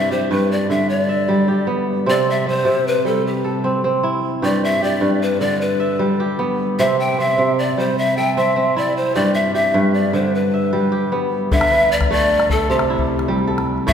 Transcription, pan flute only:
0.00 0.13 E5 medium
0.12 0.31 C5 medium
0.31 0.53 B4 medium
0.52 0.70 D5 medium
0.70 0.91 E5 medium
0.89 1.01 C#5 medium
1.01 1.68 D5 medium
2.10 2.32 D5 medium
2.30 2.48 E5 medium
2.49 2.89 C5 medium
2.88 3.08 B4 medium
3.06 3.26 A4 medium
3.27 3.81 G4 medium
4.44 4.62 D5 medium
4.65 4.85 E5 medium
4.84 5.24 D5 medium
5.22 5.42 B4 medium
5.41 5.63 D5 medium
5.61 6.20 B4 medium
6.79 7.01 E5 medium
7.00 7.21 G5 medium
7.20 7.58 E5 medium
7.59 7.81 D5 medium
7.79 8.00 C5 medium
7.98 8.19 E5 medium
8.17 8.37 G5 medium
8.37 8.79 E5 medium
8.78 8.96 D5 medium
8.97 9.17 C5 medium
9.15 9.34 D5 medium
9.34 9.53 E5 medium
9.55 9.91 E5 medium
9.94 10.15 D5 medium
10.14 10.36 C5 medium
10.35 11.13 B4 medium
11.53 11.93 E5 loud
11.92 12.11 D5 medium
12.11 12.52 D5 medium
12.51 12.70 A4 medium
12.70 13.45 G4 medium
13.88 13.93 E5 loud

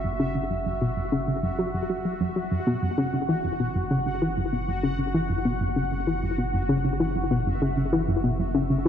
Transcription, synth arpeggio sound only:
0.04 0.18 F#2 medium
0.20 0.29 C#3 medium
0.35 0.41 C#3 medium
0.51 0.60 F#2 medium
0.66 0.75 F#2 medium
0.81 0.91 B2 loud
0.97 1.11 F#2 medium
1.12 1.22 C#3 loud
1.28 1.33 C#3 medium
1.43 1.53 F#2 medium
1.59 1.64 F#3 medium
1.74 1.88 F#2 medium
1.90 1.95 F#3 medium
2.05 2.14 F#3 medium
2.21 2.26 F#2 medium
2.36 2.42 F#3 medium
2.51 2.61 F#2 medium
2.67 2.76 B2 loud
2.82 2.96 F#2 medium
2.98 3.07 C#3 loud
3.13 3.19 C#3 medium
3.29 3.38 E3 loud
3.44 3.54 F#2 medium
3.60 3.69 B2 medium
3.75 3.89 F#2 medium
3.91 4.00 C#3 medium
4.06 4.12 C#3 medium
4.22 4.31 E3 medium
4.37 4.46 F#2 medium
4.53 4.62 B2 loud
4.68 4.82 F#2 medium
4.83 4.93 C#3 medium
4.99 5.05 C#3 medium
5.14 5.24 E3 medium
5.30 5.39 F#2 medium
5.45 5.55 B2 medium
5.61 5.75 F#2 medium
5.76 5.86 C#3 loud
5.92 5.97 C#3 medium
6.07 6.17 E3 medium
6.23 6.32 F#2 medium
6.38 6.47 B2 loud
6.54 6.68 F#2 medium
6.69 6.78 C#3 loud
6.84 6.90 C#3 medium
7.00 7.09 E3 loud
7.15 7.25 F#2 medium
7.31 7.40 B2 loud
7.46 7.60 F#2 medium
7.62 7.71 C#3 loud
7.77 7.83 C#3 medium
7.93 8.02 E3 loud
8.08 8.18 F#2 medium
8.24 8.33 B2 loud
8.39 8.53 F#2 medium
8.55 8.64 C#3 loud
8.70 8.76 C#3 medium

